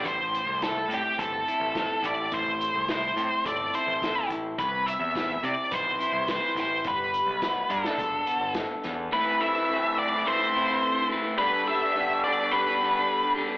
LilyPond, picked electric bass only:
\new Staff \with { instrumentName = "Picked electric bass" } { \clef bass \time 4/4 \key a \minor \tempo 4 = 106 a,,8. c,8. a,16 r16 g,,8 r16 a,,8 r16 a,,8 | a,,8. c,8. a,16 r16 g,,8 r16 a,,8 r16 a,,8 | c,8. e,8. c16 r16 b,,8 r16 c,8 r16 a,,8 | g,,8. b,,8. g,16 r16 e,,8 r16 g,,8 r16 e,8 |
r1 | r1 | }